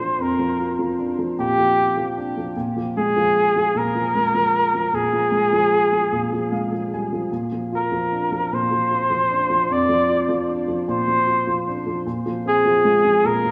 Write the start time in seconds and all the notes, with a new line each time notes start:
Already playing: A#2 D4 F4 C5
0.00 F3
0.18 F2 A#4
0.39 F3
0.59 F4
0.79 F3
0.98 D4
1.19 F3
1.39 A#2 G4
1.58 F3
1.78 F4
1.97 F3
2.17 D4
2.37 F3
2.57 A#2
2.76 F3
2.97 G#3 G#4
3.17 F3
3.56 F3
3.75 A#2 A#4
3.95 F3
4.15 G#3
4.34 F3
4.75 F3
4.93 A#2 G#4
5.13 F3
5.31 G#3
5.53 F3
5.92 F3
6.12 A#2
6.33 F3
6.52 G#3 F5
6.72 F3
6.94 G3 G#5
7.13 F3
7.32 A#2
7.52 F3
7.72 F4 A#4
7.92 F3
8.12 D4
8.32 F3
8.52 A#2 C5
8.71 F3
8.91 F4
9.10 F3
9.30 D4
9.50 F3
9.69 F2 D5
9.89 F3
10.09 F4
10.29 F3
10.48 D4
10.68 F3
10.88 A#2 C5
11.08 F3
11.27 F4
11.47 F3
11.67 D4
11.87 F3
12.06 A#2
12.26 F3
12.46 C4 G#4
12.65 F3
12.84 G#3
13.04 F3
13.24 A#2 A#4
13.44 F3